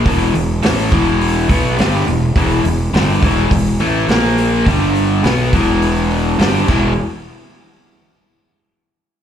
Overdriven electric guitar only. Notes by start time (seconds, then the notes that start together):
0.05 E2 B2 E3
0.34 E2 B2
0.63 A2 E3 A3
0.91 E2 B2 E3
1.49 B2 F#3 B3
1.77 G2 D3 G3
2.07 E2 B2
2.36 E2 B2 E3
2.65 E2 B2
2.94 G2 D3 G3
3.22 E2 B2 E3
3.51 E2 B2
3.80 A2 E3 A3
4.09 A#2 F3 A#3
4.65 G2 D3 G3
5.24 B2 F#3 B3
5.53 E2 B2 E3
6.39 G2 D3 G3
6.68 E2 B2 E3